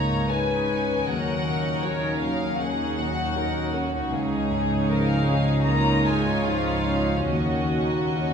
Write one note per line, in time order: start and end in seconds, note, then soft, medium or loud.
0.00 1.03 C#2 soft
0.00 1.04 C#2 soft
0.00 1.10 G#2 soft
0.00 1.10 C#3 soft
0.00 1.10 G#3 soft
0.00 0.29 A#3 soft
0.00 0.70 C#4 soft
0.00 1.31 C#4 soft
0.00 4.08 C#4 soft
0.00 0.31 D#4 soft
0.00 0.80 D#4 soft
0.00 4.08 D#4 soft
0.00 0.32 G#4 soft
0.00 0.54 G#4 soft
0.00 0.27 C#5 soft
0.00 0.29 C#5 soft
0.00 0.29 A#5 medium
0.27 1.07 G#3 soft
0.27 0.66 D#4 soft
0.27 1.07 B4 soft
0.27 1.82 C#5 soft
0.32 0.66 G#4 soft
0.32 1.09 G#5 medium
0.55 1.10 G#4 soft
0.70 1.08 C#4 soft
0.81 2.33 D#4 soft
1.07 4.08 D#2 soft
1.07 2.55 D#2 soft
1.07 4.15 D#3 soft
1.07 1.82 F#3 soft
1.07 2.56 A#4 medium
1.07 1.85 F#5 medium
1.32 2.83 C#4 soft
1.46 2.07 A#2 soft
1.57 2.07 F#4 soft
1.83 2.22 C#3 soft
1.83 2.18 D#4 soft
1.83 2.18 F#4 soft
1.83 2.21 C#5 medium
1.83 3.33 C#5 soft
2.08 3.08 F#4 soft
2.20 2.60 F#3 medium
2.20 2.82 C#4 soft
2.20 2.58 F5 medium
2.34 3.84 D#4 soft
2.59 4.08 D#2 soft
2.59 4.14 F#3 medium
2.59 4.15 A#3 soft
2.59 2.96 G#4 medium
2.59 4.12 F#5 medium
2.84 4.36 C#4 soft
2.97 3.58 A#2 soft
2.97 3.36 F#4 medium
3.09 3.59 F#4 soft
3.35 3.70 D#4 soft
3.35 3.71 F#4 soft
3.35 3.75 A#4 medium
3.35 4.85 C#5 soft
3.60 4.15 F#4 soft
3.74 4.13 C#4 soft
3.74 4.12 F#4 soft
3.85 5.38 D#4 soft
4.11 7.25 C#2 medium
4.11 5.62 C#2 medium
4.11 7.25 C#2 medium
4.11 7.32 C#3 medium
4.11 8.34 C#4 medium
4.11 7.24 D#4 medium
4.11 4.89 G#4 medium
4.37 5.91 C#4 soft
4.51 5.11 G#2 soft
4.61 5.12 G#4 soft
4.86 5.62 F3 medium
4.86 5.23 D#4 soft
4.86 5.23 G#4 soft
4.86 5.27 A#4 medium
4.86 6.44 C#5 soft
4.86 5.62 F5 medium
5.13 6.18 G#4 soft
5.27 5.90 C#4 soft
5.27 5.66 G#4 medium
5.39 6.99 D#4 soft
5.65 7.25 C#2 soft
5.65 7.32 G#3 soft
5.65 6.05 A#3 medium
5.65 7.30 F4 medium
5.65 6.06 A#5 medium
5.92 7.55 C#4 soft
6.05 6.70 G#2 soft
6.05 6.46 G#3 medium
6.05 6.46 G#5 medium
6.19 6.71 G#4 soft
6.45 7.29 F3 medium
6.45 6.82 D#4 soft
6.45 6.83 G#4 soft
6.45 8.12 C#5 soft
6.45 7.30 F5 medium
6.72 7.32 G#4 soft
6.86 7.29 C#4 soft
7.00 8.34 D#4 soft
7.28 8.34 D#2 soft
7.28 8.34 D#3 soft
7.28 8.34 F#4 soft
7.28 8.34 D#5 medium
7.57 8.34 C#4 soft
7.72 8.34 A#2 soft
7.84 8.34 A#5 soft
8.13 8.34 C#4 soft
8.13 8.34 F#4 soft
8.13 8.34 C#5 soft